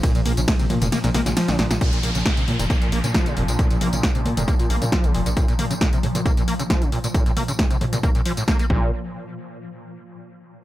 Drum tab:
RD |x---x---x---x---|----------------|----------------|----------------|
HH |xxoxxxoxxxoxxxox|xxoxxxoxxxoxxxox|xxoxxxoxxxoxxxox|xxoxxxoxxxoxxxox|
TB |xx-xxx-xxx-xxx-x|xx-xxx-xxx-xxx-x|xx-xxx-xxx-xxx-x|xx-xxx-xxx-xxx-x|
SD |----o---oooooooo|----o-------o---|----o-------o---|----o-------o---|
T2 |--o---ooo-o-----|--o---ooo-------|--o---ooo-------|--o---ooo-------|
BD |o---o-----------|o---o---o---o---|o---o---o---o---|o---o---o---o---|

RD |----------------|----------------|
HH |xxoxxxoxxxoxxx--|----------------|
TB |xx-xxx-xxx-xxx--|----------------|
SD |----o-------o---|----------------|
T2 |--o---ooo-------|----------------|
BD |o---o---o---o-o-|----------------|